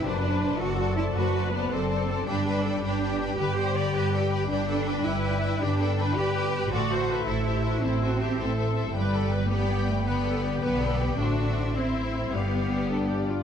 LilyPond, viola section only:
\new Staff \with { instrumentName = "Viola section" } { \time 12/8 \key g \major \tempo 4. = 107 b'4. a'4. b'4. a'4. | g'8 b'8 a'8 g'4. b'8 c''8 d''8 b'8 a'8 b'8 | g'8 a'8 b'2 g'8 a'8 b'2 | d''8 c''8 b'8 a'8 g'8 fis'8 e'8 fis'8 g'8 a'4. |
b'8 a'8 b'8 g'4. b'8 a'8 g'8 b'8 a'8 g'8 | fis'4. e'4. g'4. a'8 g'8 f'8 | }